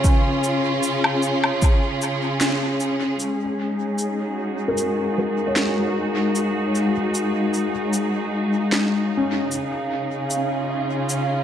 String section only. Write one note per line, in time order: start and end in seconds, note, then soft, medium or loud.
0.00 3.20 C#3 medium
0.00 5.74 C#4 medium
0.00 3.20 F4 medium
0.00 11.44 G#4 medium
3.20 9.52 G#3 medium
3.67 11.44 D#4 medium
4.25 9.52 F#4 medium
9.52 11.44 C#3 medium
10.05 11.44 C#4 medium
10.55 11.44 F4 medium